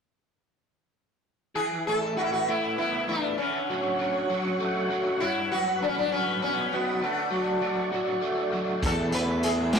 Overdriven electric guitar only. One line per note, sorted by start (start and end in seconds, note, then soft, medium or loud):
1.55 2.15 E3 medium
1.87 2.47 A3 medium
2.16 3.38 E3 medium
2.48 3.07 A3 medium
2.78 3.39 B3 medium
3.08 3.39 A3 medium
3.38 3.97 D3 medium
3.70 4.29 F#3 medium
3.98 5.20 D3 medium
4.30 4.90 F#3 medium
4.60 5.20 A3 medium
4.90 5.23 F#3 medium
5.20 6.72 G2 medium
5.52 6.10 F#3 medium
5.82 7.00 D3 medium
6.11 6.71 F#3 medium
6.43 7.03 B3 medium
6.72 7.03 F#3 medium
7.02 7.60 D3 medium
7.31 7.91 F#3 medium
7.62 8.82 D3 medium
7.92 8.51 F#3 medium
8.21 9.12 A3 medium
8.52 8.83 F#3 medium
8.82 9.42 E3 medium
9.12 9.72 A3 medium
9.43 9.79 E3 medium
9.73 9.79 A3 medium